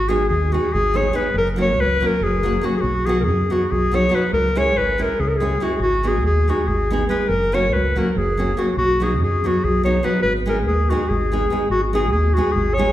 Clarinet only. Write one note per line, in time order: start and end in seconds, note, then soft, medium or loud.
0.00 0.10 F#4 loud
0.09 0.28 G#4 medium
0.28 0.54 G#4 medium
0.53 0.74 F#4 medium
0.73 0.98 G#4 loud
0.96 1.17 C#5 medium
1.16 1.35 B4 medium
1.38 1.48 A#4 medium
1.61 1.82 C#5 medium
1.80 2.08 B4 loud
2.07 2.25 A#4 medium
2.23 2.67 G#4 medium
2.65 2.76 F#4 medium
2.77 2.83 G#4 medium
2.81 3.07 F#4 medium
3.06 3.20 G#4 medium
3.20 3.54 G#4 medium
3.20 3.26 A#4 medium
3.52 3.73 F#4 medium
3.71 3.96 G#4 medium
3.95 4.16 C#5 medium
4.15 4.33 B4 medium
4.33 4.59 A#4 loud
4.58 4.79 C#5 loud
4.77 5.04 B4 medium
5.02 5.22 A#4 medium
5.20 5.29 G#4 medium
5.28 5.38 A#4 medium
5.37 5.65 G#4 medium
5.63 5.81 F#4 medium
5.81 6.09 F#4 medium
6.08 6.25 G#4 medium
6.26 6.51 G#4 medium
6.50 6.69 F#4 medium
6.68 6.90 G#4 medium
7.09 7.30 B4 medium
7.28 7.56 A#4 medium
7.54 7.75 C#5 medium
7.73 8.00 B4 medium
7.98 8.10 A#4 medium
8.10 8.19 A#4 medium
8.18 8.60 G#4 medium
8.59 8.77 F#4 medium
8.78 9.05 F#4 medium
9.03 9.22 G#4 medium
9.23 9.48 G#4 medium
9.47 9.66 F#4 medium
9.64 9.84 G#4 medium
9.84 10.06 C#5 medium
10.04 10.22 B4 medium
10.22 10.33 B4 loud
10.49 10.58 A#4 medium
10.67 10.91 G#4 medium
10.90 11.11 F#4 medium
11.09 11.69 G#4 medium
11.71 11.81 F#4 medium
11.94 12.11 G#4 medium
12.12 12.35 G#4 medium
12.34 12.53 F#4 medium
12.52 12.75 G#4 medium
12.74 12.92 C#5 medium